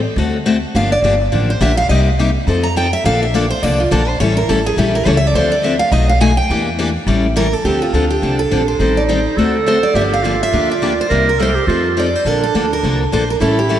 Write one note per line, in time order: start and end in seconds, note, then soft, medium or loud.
0.16 0.63 D2 loud
0.16 0.36 D3 medium
0.16 0.36 A3 medium
0.16 0.36 C4 medium
0.16 0.36 F#4 medium
0.16 0.36 A4 medium
0.46 0.56 D3 medium
0.46 0.56 A3 medium
0.46 0.56 C4 medium
0.46 0.56 F#4 medium
0.46 0.57 A4 medium
0.75 0.98 G1 medium
0.75 0.93 D3 medium
0.75 0.93 F3 medium
0.75 0.94 A#3 medium
0.75 0.94 D4 medium
0.75 0.94 G4 medium
0.75 0.91 F5 medium
0.92 0.99 D5 loud
1.02 1.27 G1 medium
1.02 1.14 D3 medium
1.02 1.14 F3 medium
1.02 1.14 A#3 medium
1.02 1.14 D4 medium
1.02 1.14 G4 medium
1.32 1.57 A1 medium
1.32 1.51 D3 medium
1.32 1.51 F3 medium
1.32 1.51 A#3 medium
1.32 1.51 D4 medium
1.32 1.51 G4 medium
1.50 1.61 C5 medium
1.61 1.85 A#1 medium
1.61 1.71 D3 medium
1.61 1.71 F3 medium
1.61 1.71 A#3 medium
1.61 1.71 D4 medium
1.61 1.71 G4 medium
1.61 1.77 E5 medium
1.77 1.89 F5 loud
1.89 2.35 C2 medium
1.89 2.08 C3 medium
1.89 2.09 G3 medium
1.89 2.09 A#3 medium
1.89 2.09 D#4 medium
1.89 2.09 G4 medium
1.89 1.99 D#5 medium
2.19 2.29 C3 medium
2.19 2.29 G3 medium
2.19 2.29 A#3 medium
2.19 2.29 D#4 medium
2.19 2.29 G4 medium
2.47 2.93 F2 loud
2.47 2.66 F3 medium
2.47 2.66 C4 medium
2.47 2.67 D#4 medium
2.47 2.67 A4 medium
2.63 2.76 A#5 medium
2.76 2.86 F3 medium
2.76 2.87 C4 medium
2.76 2.87 D#4 medium
2.76 2.87 A4 medium
2.76 2.92 G5 medium
2.93 3.05 E5 medium
3.04 3.50 A#1 medium
3.04 3.24 D3 medium
3.04 3.24 F3 medium
3.04 3.24 A#3 medium
3.04 3.24 D4 medium
3.04 3.24 A4 medium
3.04 3.21 F5 loud
3.23 3.35 E5 medium
3.34 3.44 D3 medium
3.34 3.44 F3 medium
3.34 3.44 A#3 medium
3.34 3.45 D4 medium
3.34 3.45 A4 medium
3.34 3.50 D5 medium
3.50 3.63 C5 medium
3.63 3.87 C2 medium
3.63 3.81 D3 medium
3.63 3.82 F3 medium
3.63 3.82 A#3 medium
3.63 3.82 D4 medium
3.63 3.82 A4 medium
3.63 3.78 D5 loud
3.80 3.91 F4 medium
3.91 4.16 A#1 medium
3.91 4.01 D3 medium
3.91 4.01 F3 medium
3.91 4.02 A#3 medium
3.91 4.02 D4 medium
3.91 4.08 A4 medium
3.91 4.02 A4 medium
4.08 4.20 C5 medium
4.20 4.43 A1 medium
4.20 4.39 E3 medium
4.20 4.39 G3 medium
4.20 4.39 C#4 medium
4.20 4.39 E4 medium
4.20 4.39 A4 medium
4.20 4.36 C#5 loud
4.37 4.49 A#4 medium
4.49 4.73 A1 medium
4.49 4.59 E3 medium
4.49 4.59 G3 medium
4.49 4.59 C#4 medium
4.49 4.59 E4 medium
4.49 4.65 A4 medium
4.49 4.59 A4 medium
4.66 4.78 G#4 loud
4.77 5.02 A#1 medium
4.77 4.96 E3 medium
4.77 4.96 G3 medium
4.77 4.96 C#4 medium
4.77 4.97 E4 medium
4.77 4.94 G4 medium
4.77 4.97 A4 medium
4.95 5.07 A#4 medium
5.05 5.30 C#2 loud
5.05 5.16 E3 medium
5.05 5.16 G3 medium
5.05 5.16 C#4 medium
5.05 5.16 E4 medium
5.05 5.17 A4 medium
5.05 5.16 C#5 loud
5.17 5.27 E5 loud
5.27 5.35 D5 medium
5.34 5.80 D2 medium
5.34 5.54 D3 medium
5.34 5.54 F3 medium
5.34 5.54 C4 medium
5.34 5.54 D4 medium
5.34 5.54 A4 medium
5.34 5.51 C5 loud
5.52 5.64 D5 medium
5.63 5.74 D3 medium
5.63 5.74 F3 medium
5.63 5.74 C4 medium
5.63 5.74 D4 medium
5.63 5.74 A4 medium
5.63 5.79 E5 medium
5.79 5.91 F5 loud
5.92 6.38 B1 loud
5.92 6.10 B2 medium
5.92 6.11 F#3 medium
5.92 6.11 A3 medium
5.92 6.11 D#4 medium
5.92 6.11 F#4 medium
5.92 6.08 D#5 medium
6.09 6.21 F5 loud
6.20 6.31 B2 medium
6.20 6.31 F#3 medium
6.20 6.31 A3 medium
6.20 6.31 D#4 loud
6.20 6.31 F#4 medium
6.20 6.37 G#5 loud
6.37 7.03 G5 loud
6.50 6.95 E2 medium
6.50 6.69 E3 medium
6.50 6.69 A#3 medium
6.50 6.69 D4 medium
6.50 6.69 G4 medium
6.79 6.89 E3 medium
6.79 6.89 A#3 medium
6.79 6.89 D4 medium
6.79 6.89 G4 medium
7.07 7.53 A1 loud
7.07 7.26 E3 medium
7.07 7.26 G3 medium
7.07 7.26 C#4 medium
7.07 7.26 E4 medium
7.07 7.26 A4 medium
7.36 7.46 E3 medium
7.36 7.46 G3 medium
7.36 7.46 C#4 medium
7.36 7.46 E4 medium
7.36 7.46 A4 medium
7.36 7.53 A#4 loud
7.53 7.65 A4 medium
7.64 7.87 D2 medium
7.64 7.84 D3 medium
7.64 7.84 F3 medium
7.64 7.95 C4 medium
7.64 7.84 C4 medium
7.64 7.84 D4 medium
7.64 7.81 G4 medium
7.64 7.84 A4 medium
7.82 8.10 F4 medium
7.93 8.17 D2 medium
7.93 8.04 D3 medium
7.93 8.04 F3 medium
7.93 8.04 C4 medium
7.93 8.81 D4 medium
7.93 8.04 D4 medium
7.93 8.04 A4 medium
8.10 8.37 G4 medium
8.22 8.47 C2 medium
8.22 8.41 D3 medium
8.22 8.41 F3 medium
8.22 8.41 C4 medium
8.22 8.41 D4 medium
8.22 8.41 A4 medium
8.39 8.66 A4 medium
8.51 8.75 A#1 medium
8.51 8.61 D3 medium
8.51 8.61 F3 medium
8.51 8.61 C4 medium
8.51 8.61 D4 medium
8.51 8.62 A4 medium
8.68 8.97 C5 medium
8.79 9.25 A1 medium
8.79 8.98 D#3 medium
8.79 8.98 G3 medium
8.79 8.99 C4 medium
8.79 9.38 D#4 medium
8.79 8.99 G4 medium
8.79 8.99 A4 medium
8.97 9.02 D5 medium
9.09 9.19 D#3 medium
9.09 9.19 G3 medium
9.09 9.19 C4 medium
9.09 9.19 G4 medium
9.09 9.19 A4 medium
9.09 9.51 C5 medium
9.37 9.83 D2 medium
9.37 9.56 D3 medium
9.37 9.57 A3 medium
9.37 9.57 C4 medium
9.37 9.57 F#4 medium
9.37 9.96 A4 loud
9.37 9.57 A4 medium
9.66 9.76 D3 medium
9.66 9.77 A3 medium
9.66 9.77 C4 medium
9.66 9.77 F#4 medium
9.66 9.77 A4 medium
9.66 9.84 C5 medium
9.83 9.95 D5 medium
9.94 10.41 G1 medium
9.94 10.14 D3 medium
9.94 10.14 F3 medium
9.94 10.14 A#3 medium
9.94 10.14 D4 medium
9.94 10.24 G4 medium
9.94 10.14 G4 medium
9.94 10.01 E5 medium
10.14 10.42 F5 medium
10.23 10.34 D3 medium
10.23 10.34 F3 medium
10.23 10.35 A#3 medium
10.23 10.35 D4 medium
10.23 11.08 F4 medium
10.23 10.35 G4 medium
10.43 10.68 E5 loud
10.52 10.99 D2 medium
10.52 10.71 D3 medium
10.52 10.71 F3 medium
10.52 10.72 A#3 medium
10.52 10.72 D4 medium
10.52 10.72 G4 medium
10.71 11.00 D5 medium
10.82 10.92 D3 medium
10.82 10.92 F3 medium
10.82 10.92 A#3 medium
10.82 10.92 D4 medium
10.82 10.92 G4 medium
11.01 11.26 C5 medium
11.09 11.56 C2 medium
11.09 11.29 C3 medium
11.09 11.29 G3 medium
11.09 11.29 A#3 medium
11.09 11.29 D#4 medium
11.09 11.30 G4 medium
11.09 11.40 A#4 medium
11.29 11.39 A#4 medium
11.39 11.49 C3 medium
11.39 11.50 G3 medium
11.39 11.50 A#3 medium
11.39 11.50 D#4 medium
11.39 11.50 G4 medium
11.39 11.56 A4 medium
11.39 11.83 C5 medium
11.55 11.67 G4 medium
11.67 12.14 F2 medium
11.67 11.87 F3 medium
11.67 11.87 C4 medium
11.67 11.87 D#4 medium
11.67 12.10 F4 loud
11.67 11.87 A4 medium
11.97 12.07 F3 medium
11.97 12.07 C4 medium
11.97 12.07 D#4 medium
11.97 12.08 A4 medium
11.97 12.15 D5 medium
12.15 12.27 C5 medium
12.25 12.48 A#1 medium
12.25 12.44 D3 medium
12.25 12.44 F3 medium
12.25 12.44 A#3 medium
12.25 13.10 D4 medium
12.25 12.45 D4 medium
12.25 12.45 A4 medium
12.25 12.43 A#4 medium
12.43 12.69 A4 medium
12.54 12.79 D2 medium
12.54 12.65 D3 medium
12.54 12.65 F3 medium
12.54 12.65 A#3 medium
12.54 12.65 D4 medium
12.54 12.65 A4 medium
12.73 12.99 A#4 medium
12.83 13.08 C2 medium
12.83 13.02 D3 medium
12.83 13.02 F3 medium
12.83 13.02 A#3 medium
12.83 13.02 D4 medium
12.83 13.02 A4 medium
13.12 13.36 A#1 medium
13.12 13.22 D3 medium
13.12 13.22 F3 medium
13.12 13.23 A#3 medium
13.12 13.23 D4 medium
13.12 13.23 A4 medium
13.12 13.28 C5 medium
13.30 13.35 A#4 medium
13.40 13.79 A1 medium
13.40 13.59 E3 medium
13.40 13.59 G3 medium
13.40 13.60 C#4 medium
13.40 13.79 E4 medium
13.40 13.60 E4 medium
13.40 13.60 A4 medium
13.40 13.58 A4 medium
13.59 13.79 G4 medium
13.69 13.79 E3 medium
13.69 13.79 G3 medium
13.69 13.79 C#4 medium
13.69 13.79 E4 medium
13.69 13.79 A4 medium